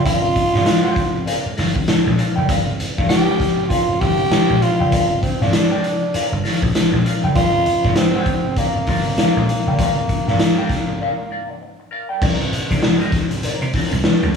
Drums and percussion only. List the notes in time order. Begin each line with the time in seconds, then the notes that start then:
0.06 kick, closed hi-hat
0.36 kick, closed hi-hat
0.55 snare
0.66 snare, closed hi-hat
0.96 kick, closed hi-hat
1.27 closed hi-hat
1.57 snare, open hi-hat
1.76 kick
1.88 snare, closed hi-hat
2.19 closed hi-hat
2.49 kick, closed hi-hat
2.80 closed hi-hat
2.98 kick, snare
3.10 snare, closed hi-hat
3.40 kick, snare, closed hi-hat
3.70 kick, closed hi-hat
4.01 kick, snare, open hi-hat
4.31 snare, closed hi-hat
4.62 closed hi-hat
4.92 kick, closed hi-hat
5.23 kick, closed hi-hat
5.41 snare
5.53 snare, closed hi-hat
5.84 closed hi-hat
6.14 closed hi-hat
6.45 snare, open hi-hat
6.62 kick
6.75 snare, closed hi-hat
7.06 closed hi-hat
7.35 kick, closed hi-hat
7.66 closed hi-hat
7.84 kick, snare
7.96 snare, closed hi-hat
8.26 kick, closed hi-hat
8.57 kick, closed hi-hat
8.87 kick, snare, open hi-hat
9.18 snare, closed hi-hat
9.49 closed hi-hat
9.79 kick, closed hi-hat
10.09 kick, closed hi-hat
10.28 snare
10.40 snare, closed hi-hat
10.70 kick, snare, closed hi-hat
12.22 kick, crash
12.41 closed hi-hat
12.53 closed hi-hat
12.71 kick, snare, closed hi-hat
12.83 snare
13.01 closed hi-hat
13.12 kick, snare, closed hi-hat
13.31 closed hi-hat
13.43 closed hi-hat
13.62 closed hi-hat
13.73 kick, snare, open hi-hat
13.91 closed hi-hat
14.04 snare
14.22 closed hi-hat